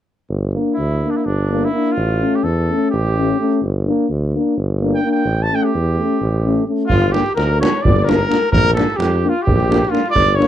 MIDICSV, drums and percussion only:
0, 0, Header, 1, 2, 480
1, 0, Start_track
1, 0, Tempo, 500000
1, 10057, End_track
2, 0, Start_track
2, 0, Title_t, "Davul"
2, 6621, Note_on_c, 9, 43, 76
2, 6717, Note_off_c, 9, 43, 0
2, 6858, Note_on_c, 9, 37, 57
2, 6954, Note_off_c, 9, 37, 0
2, 6971, Note_on_c, 9, 37, 26
2, 7067, Note_off_c, 9, 37, 0
2, 7080, Note_on_c, 9, 37, 66
2, 7176, Note_off_c, 9, 37, 0
2, 7324, Note_on_c, 9, 37, 89
2, 7420, Note_off_c, 9, 37, 0
2, 7538, Note_on_c, 9, 43, 100
2, 7634, Note_off_c, 9, 43, 0
2, 7647, Note_on_c, 9, 37, 27
2, 7743, Note_off_c, 9, 37, 0
2, 7764, Note_on_c, 9, 37, 74
2, 7860, Note_off_c, 9, 37, 0
2, 7874, Note_on_c, 9, 37, 30
2, 7970, Note_off_c, 9, 37, 0
2, 7983, Note_on_c, 9, 37, 71
2, 8079, Note_off_c, 9, 37, 0
2, 8086, Note_on_c, 9, 37, 28
2, 8182, Note_off_c, 9, 37, 0
2, 8186, Note_on_c, 9, 43, 93
2, 8282, Note_off_c, 9, 43, 0
2, 8421, Note_on_c, 9, 37, 73
2, 8517, Note_off_c, 9, 37, 0
2, 8543, Note_on_c, 9, 37, 29
2, 8639, Note_off_c, 9, 37, 0
2, 8640, Note_on_c, 9, 37, 75
2, 8736, Note_off_c, 9, 37, 0
2, 9095, Note_on_c, 9, 43, 88
2, 9191, Note_off_c, 9, 43, 0
2, 9214, Note_on_c, 9, 37, 27
2, 9310, Note_off_c, 9, 37, 0
2, 9331, Note_on_c, 9, 37, 73
2, 9427, Note_off_c, 9, 37, 0
2, 9452, Note_on_c, 9, 37, 27
2, 9548, Note_off_c, 9, 37, 0
2, 9548, Note_on_c, 9, 37, 54
2, 9644, Note_off_c, 9, 37, 0
2, 9654, Note_on_c, 9, 37, 22
2, 9749, Note_on_c, 9, 43, 75
2, 9750, Note_off_c, 9, 37, 0
2, 9845, Note_off_c, 9, 43, 0
2, 10003, Note_on_c, 9, 37, 53
2, 10057, Note_off_c, 9, 37, 0
2, 10057, End_track
0, 0, End_of_file